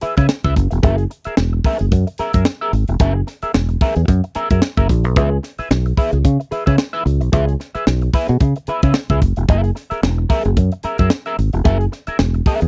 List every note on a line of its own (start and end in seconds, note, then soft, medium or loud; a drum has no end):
0.01 0.17 G#4 medium
0.01 0.16 B4 medium
0.01 0.16 E5 medium
0.01 muted fingered electric bass stroke medium
0.01 closed hi-hat medium
0.17 0.27 C#3 medium
0.17 0.27 G#4 medium
0.17 0.28 B4 medium
0.17 0.28 E5 medium
0.17 kick medium
0.17 closed hi-hat medium
0.29 snare loud
0.44 0.54 C#2 medium
0.44 0.55 G#4 medium
0.44 0.55 B4 medium
0.44 0.56 E5 medium
0.44 kick loud
0.44 closed hi-hat soft
0.56 0.68 F#1 loud
0.56 kick loud
0.56 closed hi-hat medium
0.71 0.81 E1 medium
0.71 muted clean electric guitar stroke soft
0.71 closed hi-hat medium
0.83 1.05 F#1 loud
0.83 1.03 G#4 medium
0.83 0.97 A#4 medium
0.83 0.97 E5 medium
0.83 kick loud
0.83 closed hi-hat medium
0.98 muted clean electric guitar stroke soft
0.98 closed hi-hat soft
1.10 muted clean electric guitar stroke soft
1.10 closed hi-hat medium
1.24 1.36 G#4 medium
1.24 1.36 A#4 medium
1.24 1.37 E5 medium
1.24 muted fingered electric bass stroke medium
1.24 closed hi-hat medium
1.37 1.59 E1 loud
1.37 muted clean electric guitar stroke soft
1.37 snare loud
1.53 muted clean electric guitar stroke soft
1.64 1.85 G#4 medium
1.64 1.80 A#4 medium
1.64 1.78 E5 medium
1.64 kick medium
1.64 open hi-hat medium
1.79 1.90 F#1 medium
1.79 muted clean electric guitar stroke soft
1.79 closed hi-hat medium
1.92 2.04 F#2 loud
1.92 muted clean electric guitar stroke soft
1.92 kick loud
1.92 closed hi-hat medium
2.07 muted clean electric guitar stroke soft
2.07 closed hi-hat soft
2.18 2.34 G#4 medium
2.18 2.33 A#4 medium
2.18 2.33 E5 medium
2.18 muted fingered electric bass stroke medium
2.18 closed hi-hat medium
2.33 2.44 F#2 medium
2.33 2.45 G#4 medium
2.33 2.45 A#4 medium
2.33 2.46 E5 medium
2.33 kick loud
2.33 closed hi-hat medium
2.45 muted clean electric guitar stroke soft
2.45 snare loud
2.61 2.73 G#4 medium
2.61 2.73 A#4 medium
2.61 2.74 E5 medium
2.73 2.85 G#1 medium
2.73 closed hi-hat medium
2.88 2.98 E1 medium
2.88 muted clean electric guitar stroke soft
2.88 closed hi-hat medium
3.00 3.21 F#1 loud
3.00 3.20 G#4 medium
3.00 3.15 A#4 loud
3.00 3.14 E5 medium
3.00 kick loud
3.00 closed hi-hat medium
3.15 muted clean electric guitar stroke soft
3.27 muted clean electric guitar stroke soft
3.27 snare soft
3.27 closed hi-hat medium
3.42 3.53 G#4 medium
3.42 3.53 A#4 medium
3.42 3.53 E5 medium
3.42 muted fingered electric bass stroke soft
3.42 closed hi-hat medium
3.54 3.75 E1 medium
3.54 snare loud
3.69 muted clean electric guitar stroke soft
3.69 closed hi-hat soft
3.81 4.01 G#4 medium
3.81 3.96 A#4 medium
3.81 3.95 E5 medium
3.81 kick loud
3.81 open hi-hat medium
3.96 4.06 E2 medium
3.96 muted clean electric guitar stroke soft
3.96 closed hi-hat medium
4.08 4.20 F#2 loud
4.08 muted clean electric guitar stroke soft
4.08 kick loud
4.08 closed hi-hat loud
4.24 muted clean electric guitar stroke soft
4.24 closed hi-hat soft
4.35 4.50 G#4 medium
4.35 4.50 A#4 medium
4.35 4.50 E5 medium
4.35 muted fingered electric bass stroke medium
4.35 closed hi-hat loud
4.50 4.60 F#2 medium
4.50 4.61 G#4 medium
4.50 4.62 A#4 medium
4.50 4.62 E5 medium
4.50 kick medium
4.50 closed hi-hat medium
4.62 muted clean electric guitar stroke soft
4.62 snare loud
4.77 4.87 F#1 medium
4.77 4.88 G#4 medium
4.77 4.88 A#4 medium
4.77 4.89 E5 medium
4.77 kick loud
4.77 closed hi-hat soft
4.89 5.04 A#1 loud
4.89 kick loud
4.89 closed hi-hat medium
5.04 5.16 B1 medium
5.04 muted clean electric guitar stroke soft
5.04 closed hi-hat medium
5.16 5.37 C#2 loud
5.16 5.36 G#4 medium
5.16 5.31 B4 medium
5.16 5.30 E5 medium
5.16 kick loud
5.16 closed hi-hat medium
5.32 muted clean electric guitar stroke soft
5.43 muted clean electric guitar stroke soft
5.43 snare soft
5.43 closed hi-hat medium
5.58 5.69 G#4 medium
5.58 5.70 B4 medium
5.58 5.70 E5 medium
5.58 muted fingered electric bass stroke soft
5.58 closed hi-hat medium
5.71 5.92 B1 loud
5.71 snare loud
5.86 muted clean electric guitar stroke soft
5.86 closed hi-hat soft
5.97 6.17 G#4 medium
5.97 6.13 B4 medium
5.97 6.12 E5 loud
5.97 kick loud
5.97 open hi-hat medium
6.13 6.22 C#2 medium
6.13 muted clean electric guitar stroke soft
6.13 closed hi-hat medium
6.24 6.36 C#3 loud
6.24 muted clean electric guitar stroke soft
6.24 kick medium
6.24 closed hi-hat loud
6.40 muted clean electric guitar stroke medium
6.40 closed hi-hat soft
6.51 6.66 G#4 medium
6.51 6.65 B4 medium
6.51 6.65 E5 medium
6.51 muted fingered electric bass stroke soft
6.51 closed hi-hat medium
6.66 6.76 C#3 medium
6.66 6.77 G#4 medium
6.66 6.77 B4 medium
6.66 6.77 E5 medium
6.66 kick medium
6.66 closed hi-hat medium
6.78 snare loud
6.93 7.04 G#4 medium
6.93 7.04 B4 medium
6.93 7.05 E5 loud
6.93 closed hi-hat soft
7.05 7.21 C#2 medium
7.05 muted clean electric guitar stroke medium
7.05 closed hi-hat medium
7.21 7.30 B1 medium
7.21 muted clean electric guitar stroke soft
7.21 closed hi-hat medium
7.32 7.54 C#2 loud
7.32 7.52 G#4 medium
7.32 7.47 B4 medium
7.32 7.46 E5 medium
7.32 kick loud
7.32 closed hi-hat medium
7.47 muted clean electric guitar stroke medium
7.47 closed hi-hat soft
7.60 muted clean electric guitar stroke soft
7.60 snare soft
7.60 closed hi-hat medium
7.75 7.86 G#4 medium
7.75 7.86 B4 medium
7.75 7.87 E5 medium
7.75 muted fingered electric bass stroke medium
7.75 closed hi-hat medium
7.87 8.08 B1 loud
7.87 snare loud
8.01 muted clean electric guitar stroke medium
8.01 closed hi-hat soft
8.14 8.34 G#4 medium
8.14 8.29 B4 medium
8.14 8.28 E5 medium
8.14 kick loud
8.14 open hi-hat medium
8.29 8.38 B2 loud
8.29 muted clean electric guitar stroke soft
8.29 closed hi-hat medium
8.40 8.53 C#3 loud
8.40 muted clean electric guitar stroke medium
8.40 kick medium
8.40 closed hi-hat medium
8.56 muted clean electric guitar stroke medium
8.56 closed hi-hat soft
8.67 8.83 G#4 medium
8.67 8.83 B4 medium
8.67 8.82 E5 medium
8.67 muted fingered electric bass stroke medium
8.67 closed hi-hat medium
8.82 8.93 C#3 medium
8.82 8.94 G#4 medium
8.82 8.94 B4 medium
8.82 8.95 E5 medium
8.82 kick loud
8.82 closed hi-hat medium
8.94 snare loud
9.09 9.19 C#2 medium
9.09 9.21 G#4 medium
9.09 9.21 B4 medium
9.09 9.22 E5 medium
9.09 kick medium
9.09 closed hi-hat soft
9.22 9.34 F#1 medium
9.22 kick loud
9.22 closed hi-hat medium
9.36 9.47 E1 medium
9.36 muted clean electric guitar stroke soft
9.36 closed hi-hat medium
9.48 9.70 F#1 loud
9.48 9.70 G#4 medium
9.48 9.63 A#4 medium
9.48 9.62 E5 medium
9.48 kick loud
9.48 closed hi-hat medium
9.63 muted clean electric guitar stroke medium
9.63 closed hi-hat soft
9.75 muted clean electric guitar stroke soft
9.75 snare soft
9.75 closed hi-hat medium
9.90 10.01 G#4 medium
9.90 10.02 A#4 medium
9.90 10.02 E5 medium
9.90 muted fingered electric bass stroke medium
9.90 closed hi-hat medium
10.02 10.24 E1 loud
10.02 muted clean electric guitar stroke soft
10.02 snare loud
10.18 muted clean electric guitar stroke medium
10.29 10.49 G#4 medium
10.29 10.45 A#4 loud
10.29 10.44 E5 loud
10.29 kick loud
10.29 open hi-hat medium
10.45 10.55 F#1 loud
10.45 muted clean electric guitar stroke medium
10.45 closed hi-hat medium
10.57 10.69 F#2 loud
10.57 muted clean electric guitar stroke soft
10.57 kick loud
10.57 closed hi-hat loud
10.72 muted clean electric guitar stroke medium
10.72 closed hi-hat soft
10.83 10.99 G#4 medium
10.83 10.99 A#4 medium
10.83 10.98 E5 medium
10.83 muted fingered electric bass stroke medium
10.83 closed hi-hat medium
10.98 11.09 F#2 medium
10.98 11.10 G#4 medium
10.98 11.10 A#4 medium
10.98 11.11 E5 medium
10.98 kick medium
10.98 closed hi-hat medium
11.10 snare loud
11.25 11.37 G#4 medium
11.25 11.37 A#4 medium
11.25 11.38 E5 medium
11.25 closed hi-hat soft
11.39 11.50 G#1 loud
11.39 closed hi-hat medium
11.53 11.63 E1 medium
11.53 muted clean electric guitar stroke medium
11.53 closed hi-hat soft
11.64 11.86 F#1 loud
11.64 11.85 G#4 medium
11.64 11.79 A#4 loud
11.64 11.79 E5 loud
11.64 kick loud
11.64 closed hi-hat medium
11.80 muted clean electric guitar stroke medium
11.80 closed hi-hat soft
11.92 muted clean electric guitar stroke soft
11.92 snare soft
11.92 closed hi-hat medium
12.07 12.18 G#4 medium
12.07 12.19 A#4 medium
12.07 12.19 E5 medium
12.07 muted fingered electric bass stroke medium
12.07 closed hi-hat medium
12.19 12.40 E1 medium
12.19 snare loud
12.34 muted clean electric guitar stroke soft
12.34 closed hi-hat soft
12.46 12.67 G#4 medium
12.46 12.62 A#4 medium
12.46 12.61 E5 loud
12.46 kick loud
12.46 open hi-hat medium
12.61 12.68 E2 loud
12.61 muted clean electric guitar stroke soft
12.61 closed hi-hat medium